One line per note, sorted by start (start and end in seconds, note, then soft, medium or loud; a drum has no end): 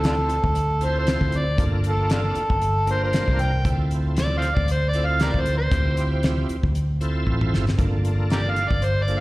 0.00 0.39 D2 medium
0.00 0.37 C4 medium
0.00 0.37 E4 medium
0.00 0.37 F4 medium
0.00 0.37 A4 medium
0.00 closed hi-hat medium
0.05 0.15 D4 medium
0.05 0.14 F4 medium
0.05 0.85 A4 medium
0.05 snare loud
0.29 closed hi-hat medium
0.44 1.17 D2 medium
0.44 kick medium
0.55 closed hi-hat medium
0.81 1.45 C4 medium
0.81 1.45 E4 medium
0.81 1.45 F4 medium
0.81 1.46 A4 medium
0.81 0.96 C5 medium
0.81 closed hi-hat medium
0.99 1.39 C5 medium
1.07 snare medium
1.07 closed hi-hat medium
1.21 1.56 D2 medium
1.21 kick medium
1.32 closed hi-hat medium
1.38 1.60 D5 loud
1.57 2.32 G1 medium
1.57 2.43 A#3 medium
1.57 2.43 D4 medium
1.57 2.43 F4 medium
1.57 2.43 A4 medium
1.57 kick loud
1.57 closed hi-hat medium
1.84 closed hi-hat medium
1.89 2.11 A4 medium
2.10 2.20 D4 soft
2.10 2.19 F4 soft
2.10 2.86 A4 medium
2.10 snare loud
2.10 closed hi-hat medium
2.35 muted fingered electric bass stroke soft
2.35 closed hi-hat medium
2.50 3.24 G1 medium
2.50 kick medium
2.61 closed hi-hat medium
2.86 3.51 A#3 medium
2.86 3.51 D4 medium
2.86 3.52 F4 medium
2.86 3.52 A#4 medium
2.86 closed hi-hat medium
2.91 3.02 C5 medium
3.04 3.43 C5 medium
3.13 snare loud
3.13 closed hi-hat medium
3.28 3.63 C2 medium
3.28 kick medium
3.39 3.65 G5 loud
3.39 closed hi-hat medium
3.64 4.53 D2 medium
3.64 4.50 C4 medium
3.64 4.50 E4 medium
3.64 4.50 F4 medium
3.64 4.50 A4 medium
3.64 kick loud
3.64 closed hi-hat medium
3.91 closed hi-hat medium
4.17 4.35 D5 medium
4.17 snare loud
4.17 closed hi-hat medium
4.38 4.46 C5 medium
4.38 4.45 D5 medium
4.38 4.56 F5 medium
4.42 closed hi-hat medium
4.54 5.30 D2 medium
4.54 4.69 D5 medium
4.54 kick medium
4.68 4.87 C5 medium
4.68 closed hi-hat medium
4.89 5.07 D5 medium
4.93 5.59 C4 medium
4.93 5.59 E4 medium
4.93 5.59 F4 medium
4.93 5.59 A4 medium
4.93 closed hi-hat medium
5.05 5.21 F5 medium
5.20 5.30 G4 medium
5.20 5.31 A#4 medium
5.20 5.42 D5 medium
5.20 snare loud
5.20 closed hi-hat medium
5.34 5.69 D2 medium
5.34 kick medium
5.41 5.56 C5 medium
5.46 closed hi-hat medium
5.58 6.06 C5 medium
5.71 6.45 D2 medium
5.71 6.57 C4 medium
5.71 6.57 E4 medium
5.71 6.57 F4 medium
5.71 6.57 G4 medium
5.71 kick loud
5.71 closed hi-hat medium
5.97 closed hi-hat medium
6.23 snare loud
6.23 closed hi-hat medium
6.49 muted fingered electric bass stroke soft
6.49 closed hi-hat medium
6.63 7.23 D2 medium
6.63 kick medium
6.75 closed hi-hat medium
7.01 7.65 C4 medium
7.01 7.65 E4 medium
7.01 7.66 F4 medium
7.01 7.66 A4 loud
7.01 closed hi-hat medium
7.27 7.50 A1 medium
7.27 kick medium
7.41 mid tom medium
7.53 7.76 G1 medium
7.53 snare medium
7.69 snare medium
7.78 8.67 G1 medium
7.78 8.63 A#3 medium
7.78 8.64 D4 medium
7.78 8.64 F4 medium
7.78 8.64 A4 medium
7.78 kick loud
7.78 closed hi-hat medium
8.05 closed hi-hat medium
8.30 8.40 G4 medium
8.30 8.40 A#4 medium
8.30 8.52 D5 medium
8.30 snare loud
8.30 closed hi-hat medium
8.50 8.70 F5 medium
8.56 closed hi-hat medium
8.68 9.20 G1 medium
8.68 8.86 D5 medium
8.68 kick medium
8.82 9.04 C5 medium
8.82 closed hi-hat medium
9.03 9.20 D5 loud
9.08 9.20 A#3 medium
9.08 9.20 D4 medium
9.08 9.20 F4 medium
9.08 9.20 A4 medium
9.08 closed hi-hat medium